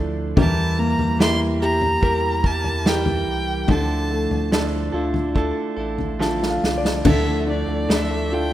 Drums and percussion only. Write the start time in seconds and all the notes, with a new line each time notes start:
0.37 kick, floor tom
0.99 floor tom
1.20 snare
1.82 floor tom
2.03 kick
2.44 kick
2.64 floor tom
2.86 snare
3.06 floor tom
3.68 kick, floor tom
4.31 floor tom
4.52 snare
5.14 floor tom
5.36 kick
5.98 floor tom
6.21 snare
6.43 snare
6.64 snare
6.85 snare
7.05 kick, floor tom, crash
7.90 snare